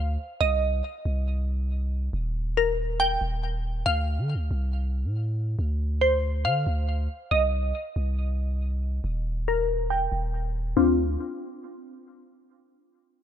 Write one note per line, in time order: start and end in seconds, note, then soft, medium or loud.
0.00 0.17 D2 loud
0.00 0.40 C5 medium
0.00 0.41 F5 loud
0.41 0.82 C2 loud
0.41 2.13 D#5 loud
1.05 2.09 C2 loud
2.13 3.17 D#1 loud
2.57 3.86 A#4 medium
3.00 3.86 G5 loud
3.21 3.83 D#1 loud
3.86 4.20 D2 loud
3.86 6.44 F5 loud
4.18 4.36 D3 medium
4.35 4.50 D2 medium
4.51 5.06 C2 loud
5.05 5.56 A2 loud
5.59 6.47 D2 loud
6.01 7.31 C5 medium
6.45 6.66 D3 loud
6.45 7.31 F5 loud
6.67 7.08 D2 loud
7.31 7.73 C2 loud
7.31 9.04 D#5 loud
7.96 9.00 C2 loud
9.04 10.08 D#1 loud
9.48 10.77 A#4 loud
9.90 10.77 G5 loud
10.12 10.74 D#1 loud
10.77 11.17 D2 loud
10.77 10.97 C4 medium
10.77 10.97 D4 medium
10.77 10.97 F4 medium